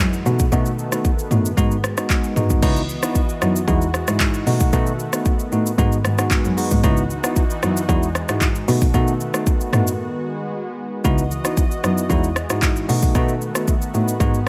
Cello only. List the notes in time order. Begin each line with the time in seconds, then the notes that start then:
0.00 F#2
0.26 B2
0.52 B2
1.31 A2
1.57 G#2
2.36 G#2
2.63 C#2
3.41 F#2
3.68 E2
4.08 G#2
4.47 B2
4.73 B2
5.52 A2
5.78 G#2
6.05 G#2
6.45 F#2
6.71 G#2
6.84 C#2
7.63 F#2
7.89 E2
8.29 G#2
8.68 B2
8.94 B2
9.73 A2
11.05 C#2
11.84 F#2
12.10 E2
12.50 G#2
12.89 B2
13.15 B2
13.94 A2
14.20 G#2